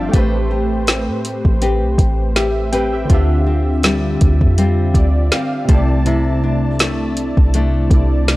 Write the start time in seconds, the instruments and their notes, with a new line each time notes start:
Already playing: nylon-string guitar G2 F3 C4 D4, synth keys D5 E5 F5 G5 A5
0.09 synth keys A3 G4
0.14 808-style bass A1, nylon-string guitar A3 B4, synth keys B4, kick, closed hi-hat
0.18 synth keys C5
0.51 nylon-string guitar G4
0.87 nylon-string guitar C4, snare, closed hi-hat
1.08 808-style bass A2
1.25 closed hi-hat
1.45 808-style bass A1, kick
1.62 nylon-string guitar C4 G4 B4, closed hi-hat
1.82 808-style bass B1
1.98 808-style bass A1, kick, closed hi-hat
2.36 nylon-string guitar G4, synth keys G4 E5, snare, closed hi-hat
2.72 nylon-string guitar C4 G4 B4, synth keys B4 G5, closed hi-hat
2.93 synth keys G4 E5
3.05 synth keys D3 C4
3.09 808-style bass D2, nylon-string guitar D3 F4, synth keys F4 G4, kick, closed hi-hat
3.14 synth keys E5
3.46 nylon-string guitar C4
3.83 nylon-string guitar G3, snare, closed hi-hat
4.21 808-style bass D2, kick, closed hi-hat
4.41 808-style bass F2, kick
4.58 nylon-string guitar G3 C4 F4, closed hi-hat
4.94 808-style bass D2, synth keys D5, kick, closed hi-hat
5.32 nylon-string guitar C4, synth keys F5, snare, closed hi-hat
5.65 synth keys C3 A3, nylon-string guitar C3, closed hi-hat
5.69 808-style bass C2, synth keys E4 A5, kick
5.74 synth keys D5
6.06 nylon-string guitar C3 E4, closed hi-hat
6.44 nylon-string guitar D4
6.79 nylon-string guitar A3, snare, closed hi-hat
7.17 closed hi-hat
7.37 808-style bass C2, kick
7.54 nylon-string guitar A3 D4 E4, closed hi-hat
7.90 808-style bass C2, synth keys C3 A3 E4, kick, closed hi-hat
7.94 synth keys D5
8.28 nylon-string guitar D4, snare, closed hi-hat